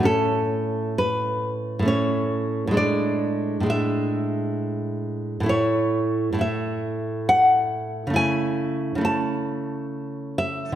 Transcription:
\new Staff \with { instrumentName = "Nylon-string guitar" } { \time 3/4 \key a \major \tempo 4 = 67 << { a'4 b'4 cis''4 | d''4 e''2 | cis''4 e''4 fis''4 | gis''4 a''4. e''8 | } \\ { <a, a cis'>2 <a, a cis'>4 | <a, gis d'>4 <a, gis d'>2 | <a, a e'>4 <a, a e'>2 | <cis a e'>4 <cis a e'>2 | } >> }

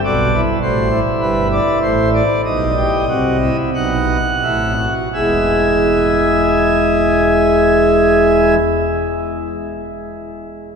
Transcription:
<<
  \new Staff \with { instrumentName = "Pipe organ" } { \time 4/4 \key b \phrygian \tempo 4 = 42 << { d''8 c''8 b'16 d''16 c''16 d''16 dis''4 fis''4 | <e gis e''>1 | } \\ { fis'16 e'16 fis'16 e'4~ e'16 dis'16 g'16 fis'16 e'16 dis'8 e'16 fis'16 | gis'1 | } >> }
  \new Staff \with { instrumentName = "Pipe organ" } { \clef bass \time 4/4 \key b \phrygian <b,, b,>8 <a,, a,>8 <g,, g,>8 <a,, a,>8 <b,, b,>8 <c, c>8 <b,, b,>8 <a,, a,>8 | <e,, e,>1 | }
>>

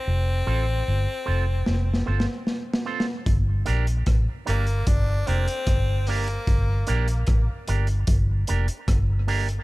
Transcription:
<<
  \new Staff \with { instrumentName = "Clean electric guitar" } { \time 4/4 \key g \minor \tempo 4 = 75 r8 <c' f' a' c''>8 r8 <c' f' a' c''>8 r8 <c' f' a' c''>8 r8 <c' f' a' c''>8 | r8 <bes d' g' bes'>8 r8 <bes d' g' bes'>8 r8 <bes d' g' bes'>8 r8 <bes d' g' bes'>8 | r8 <bes d' g' bes'>8 r8 <bes d' g' bes'>8 r8 <bes d' g' bes'>8 r8 <bes d' g' bes'>8 | }
  \new Staff \with { instrumentName = "Tenor saxophone" } { \time 4/4 \key g \minor c'2. r4 | r4. bes8 d'8 c'4 bes8~ | bes4 r2. | }
  \new Staff \with { instrumentName = "Fingered electric bass" } { \clef bass \time 4/4 \key g \minor f,,8 a,,8 g,,16 r16 f,,8 f,,8 g,,16 r4 r16 | g,,8 bes,,8 a,,16 r16 g,,8 g,,8 f,,16 r16 g,,4 | g,,8 bes,,8 a,,16 r16 g,,8 g,,8 f,,16 r16 g,,4 | }
  \new DrumStaff \with { instrumentName = "Drums" } \drummode { \time 4/4 r4 r4 \tuplet 3/2 { sn8 sn8 sn8 sn8 sn8 sn8 } | <hh bd>8 hh16 hh16 <hh bd ss>8 hh16 hh16 <hh bd>8 hh16 hh16 <hh bd ss>8 hho16 hh16 | <hh bd>8 hh16 hh16 <hh bd ss>8 hh16 hh16 <hh bd>8 hh16 hh16 <hh bd ss>8 hho16 hh16 | }
>>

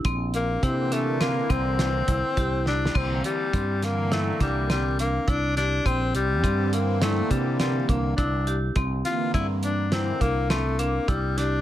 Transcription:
<<
  \new Staff \with { instrumentName = "Vibraphone" } { \time 5/4 \key c \mixolydian \tempo 4 = 103 d'1 e'4 | r1 r4 | r1 r4 | r1 r4 | }
  \new Staff \with { instrumentName = "Marimba" } { \time 5/4 \key c \mixolydian c'4 e'8 d'8 c'8 c'4 e'8 g'8 e'8 | c'4 c'4 e'8 d'8 c'8 d'8 e'8 g'8 | c'4 c'4 e'8 d'8 c'8 d'8 e'8 g'8 | c'4 c'4 e'8 d'8 c'8 d'8 e'8 g'8 | }
  \new Staff \with { instrumentName = "Tenor saxophone" } { \time 5/4 \key c \mixolydian r8 bes8 c'8 a8 bes8 c'2 d'8 | c'8 g4 bes8 a8 g8 g8 bes8 d'8 d'8 | c'8 g4 bes8 a8 g8 g8 bes8 d'8. r16 | r8 f'8 e'8 d'8 c'8 bes8 a8 bes8 g8 d'8 | }
  \new Staff \with { instrumentName = "Analog synth pad" } { \clef bass \time 5/4 \key c \mixolydian r4 <d e bes>4 <d e bes>4. r4. | <d e bes>8 r4 <d e bes>4. r2 | r4 <d e c'>4 <d e bes>4. r4. | r8 <d e bes>8 r4 <d e bes>8 r2 r8 | }
  \new Staff \with { instrumentName = "Fretless electric bass" } { \clef bass \time 5/4 \key c \mixolydian bes,,4 c4. c,4 c,16 r16 c,4 | c,8 r8 g,4. c,4. c,4 | bes,,8 c,8 g,4. c4 c,8 c,4 | c,8 r8 g,4. c,4. c,4 | }
  \new DrumStaff \with { instrumentName = "Drums" } \drummode { \time 5/4 <hh bd>8 hh8 <hh bd>8 <hh sn>8 <hh sn>8 <hh bd>8 <hh sn>8 <hh bd>8 \tuplet 3/2 { <hh bd>16 r16 r16 sn16 r16 sn16 } | <cymc bd>8 hh8 <hh bd>8 <hh sn>8 <hh sn>8 <hh bd sn>8 <hh sn>8 hh8 <hh bd>8 <hh sn>8 | <hh bd>8 hh8 <hh bd>8 hh8 <hh sn>8 <hh bd>8 <hh sn>8 <hh bd>8 <hh bd>8 hh8 | <hh bd>8 <hh sn>8 <hh bd>8 hh8 <hh sn>8 <hh bd>8 <hh sn>8 hh8 <hh bd>8 <hh sn>8 | }
>>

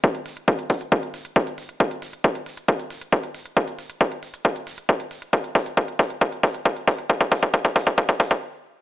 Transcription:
\new DrumStaff \with { instrumentName = "Drums" } \drummode { \time 4/4 \tempo 4 = 136 <hh bd>16 hh16 hho16 hh16 <hh bd>16 hh16 <hho bd>16 hh16 <hh bd>16 hh16 hho16 hh16 <hh bd>16 hh16 hho16 hh16 | <hh bd>16 hh16 hho16 hh16 <hh bd>16 hh16 hho16 hh16 <hh bd>16 hh16 hho16 hh16 <hh bd>16 hh16 hho16 hh16 | <hh bd>16 hh16 hho16 hh16 <hh bd>16 hh16 hho16 hh16 <hh bd>16 hh16 hho16 hh16 <hh bd>16 hh16 hho16 hh16 | <hh bd>16 hh16 <hho bd>16 hh16 <hh bd>16 hh16 <hho bd>16 hh16 <hh bd>16 hh16 <hho bd>16 hh16 <hh bd>16 hh16 <hho bd>16 hh16 |
<hh bd>16 <hh bd>16 <hho bd>16 <hh bd>16 <hh bd>16 <hh bd>16 <hho bd>16 <hh bd>16 <hh bd>16 <hh bd>16 <hho bd>16 <hh bd>16 r4 | }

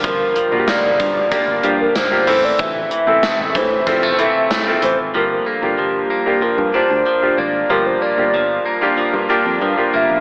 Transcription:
<<
  \new Staff \with { instrumentName = "Soft synth lead" } { \time 4/4 \key g \dorian \tempo 4 = 94 bes'4 d''4 r8. bes'16 r8. d''16 | e''4. c''8 c''8 e''4 c''8 | bes'16 bes'16 a'8 g'4 bes'8 c''4 d''8 | bes'16 c''16 d''2 r4 e''8 | }
  \new Staff \with { instrumentName = "Grand piano" } { \time 4/4 \key g \dorian <bes d' f' g'>8. <bes d' f' fis' g'>4~ <bes d' f' fis' g'>16 <bes d' f' g'>8 <bes d' f' g'>8. <bes d' f' g'>16 <c' e' a'>8~ | <c' e' a'>8. <c' e' a'>4~ <c' e' a'>16 <c' e' f' a'>8 <c' e' a'>8. <c' e' f' a'>8. | <bes d' f' g'>8. <bes d' f' g'>4 <bes d' f' g'>8. <bes d' f' g'>8. <bes d' f' g'>8. | <bes d' f' g'>8. <bes d' f' g'>4 <bes d' f' g'>8. <bes d' f' g'>8. <bes d' f' g'>8. | }
  \new Staff \with { instrumentName = "Grand piano" } { \clef bass \time 4/4 \key g \dorian g,4 r2 r8 a,8~ | a,4 r2. | g,4. r2 r8 | g,4. r2 r8 | }
  \new Staff \with { instrumentName = "Analog synth pad" } { \time 4/4 \key g \dorian <d g bes f'>2.~ <d g bes f'>8 <c a e''>8~ | <c a e''>1 | <g bes d' f'>1~ | <g bes d' f'>1 | }
  \new Staff \with { instrumentName = "Clean electric guitar" } { \clef bass \time 4/4 \key g \dorian f8 f8 bes8 f8 bes8 f8 bes8 e8 | e8 e8 a8 e8 g16 a16 e8 a8 e8 | f8 bes8 f8 bes8 f8 d'8 f8 bes8 | f8 bes8 f8 bes8 f8 d'8 f8 bes8 | }
  \new Staff \with { instrumentName = "Picked electric bass" } { \clef bass \time 4/4 \key g \dorian g,,8. bes,,16 r16 g,,16 g,8 r16 g,,16 g,8 g,,8 a,,8 | a,,8 r16 a,,16 r16 a,,16 a,8 f,8 r8 a,16 r16 a,,16 gis,,16 | g,,8 r16 g,,16 g,,8 r8. g,16 r16 d,16 r8 gis,,8 | g,,8 r16 g,,16 g,,8 r8. g,16 r16 f,16 g,16 r16 g,,16 b,,16 | }
  \new DrumStaff \with { instrumentName = "Drums" } \drummode { \time 4/4 <hh bd>8 hh8 <hh sn tamb>8 <hh bd>8 <hh bd>8 hh8 <hh sn tamb>8 hho8 | <hh bd>8 hh8 <hh sn tamb>8 <hh bd>8 <hh bd>8 hh8 <hh sn tamb>8 hh8 | r4 r4 r4 r4 | r4 r4 r4 r4 | }
>>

